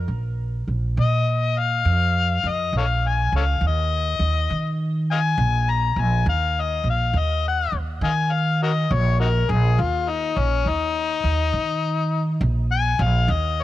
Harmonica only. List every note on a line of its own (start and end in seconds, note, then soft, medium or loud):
1.01 1.61 D#5 loud
1.59 2.50 F5 medium
2.48 2.74 D#5 medium
2.78 2.84 A4 medium
2.78 2.84 C#5 medium
2.78 3.09 F5 medium
3.08 3.34 G#5 medium
3.36 3.43 A4 medium
3.36 3.43 C#5 medium
3.36 3.62 F5 medium
3.67 4.78 D#5 loud
5.11 5.18 D#5 medium
5.11 5.18 F5 medium
5.11 5.72 G#5 loud
5.71 6.02 A#5 medium
6.00 6.26 G#5 medium
6.29 6.62 F5 medium
6.61 6.86 D#5 medium
6.90 7.20 F5 medium
7.19 7.44 D#5 medium
7.48 7.74 F#5 loud
8.04 8.13 D#5 medium
8.04 8.10 F5 medium
8.04 8.33 G#5 loud
8.32 8.60 F5 medium
8.63 8.72 F#4 medium
8.63 8.71 A#4 medium
8.63 8.95 D#5 medium
8.93 9.20 C#5 medium
9.20 9.29 D#4 medium
9.20 9.28 F#4 medium
9.20 9.52 A#4 medium
9.50 9.82 G#4 medium
9.81 10.11 F4 medium
10.09 10.40 D#4 medium
10.39 10.70 C#4 loud
10.69 12.39 D#4 loud
12.72 13.04 G#5 loud
13.03 13.33 F5 loud
13.31 13.63 D#5 medium